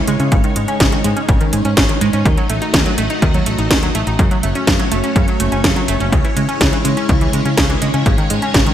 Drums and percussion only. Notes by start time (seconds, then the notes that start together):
0.07 closed hi-hat
0.20 closed hi-hat
0.32 kick, closed hi-hat
0.44 closed hi-hat
0.56 closed hi-hat
0.68 closed hi-hat
0.80 kick, snare, closed hi-hat
0.92 closed hi-hat
1.04 closed hi-hat
1.17 closed hi-hat
1.29 kick, closed hi-hat
1.41 closed hi-hat
1.53 closed hi-hat
1.65 closed hi-hat
1.77 kick, snare, closed hi-hat
1.89 closed hi-hat
2.01 closed hi-hat
2.13 closed hi-hat
2.25 kick, closed hi-hat
2.38 closed hi-hat
2.50 closed hi-hat
2.62 closed hi-hat
2.74 kick, snare, closed hi-hat
2.86 closed hi-hat
2.98 closed hi-hat
3.10 closed hi-hat
3.22 kick, closed hi-hat
3.34 closed hi-hat
3.46 closed hi-hat
3.58 closed hi-hat
3.71 kick, snare, closed hi-hat
3.83 closed hi-hat
3.95 closed hi-hat
4.07 closed hi-hat
4.19 kick, closed hi-hat
4.31 closed hi-hat
4.43 closed hi-hat
4.55 closed hi-hat
4.67 kick, snare, closed hi-hat
4.79 closed hi-hat
4.92 closed hi-hat
5.04 closed hi-hat
5.16 kick, closed hi-hat
5.28 closed hi-hat
5.40 closed hi-hat
5.52 closed hi-hat
5.64 kick, snare, closed hi-hat
5.76 closed hi-hat
5.88 closed hi-hat
6.00 closed hi-hat
6.12 kick, closed hi-hat
6.25 closed hi-hat
6.37 closed hi-hat
6.49 closed hi-hat
6.61 kick, snare, closed hi-hat
6.73 closed hi-hat
6.85 closed hi-hat
6.97 closed hi-hat
7.09 kick, closed hi-hat
7.21 closed hi-hat
7.33 closed hi-hat
7.46 closed hi-hat
7.58 kick, snare, closed hi-hat
7.70 closed hi-hat
7.82 closed hi-hat
7.94 closed hi-hat
8.06 kick, closed hi-hat
8.18 closed hi-hat
8.30 closed hi-hat
8.42 closed hi-hat
8.54 kick, snare, closed hi-hat
8.66 closed hi-hat